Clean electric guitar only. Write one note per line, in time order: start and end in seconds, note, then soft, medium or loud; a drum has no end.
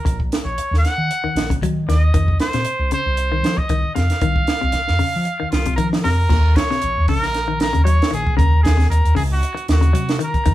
0.05 muted clean electric guitar stroke medium
1.24 1.44 D#3 medium
1.50 1.59 C#3 medium
1.63 1.83 F#3 medium
1.89 2.08 D#3 medium
2.14 2.34 D#3 medium
2.54 2.74 C3 medium
2.92 3.12 C#3 medium
3.32 3.52 D#3 medium
3.57 muted clean electric guitar stroke medium
3.70 3.90 D#3 medium
3.96 4.16 C3 medium
4.22 4.42 D#3 medium
4.61 4.82 C3 medium
4.99 5.20 C#3 medium
5.40 5.60 D#3 medium
5.66 5.75 C3 medium
5.78 5.98 D#3 medium
6.04 6.24 C3 medium
6.30 6.50 A#2 medium
6.71 6.91 C3 medium
7.09 7.29 C#3 medium
7.48 7.68 D#3 medium
7.73 7.83 C#3 medium
7.85 8.06 F#3 medium
8.11 8.31 D#3 medium
8.37 8.57 C#3 medium
8.77 8.98 C3 medium
9.15 9.36 C#3 medium
9.55 muted clean electric guitar stroke medium
9.81 9.91 C#3 medium
9.93 10.14 F#3 medium
10.19 10.40 D#3 medium
10.46 10.54 D#3 medium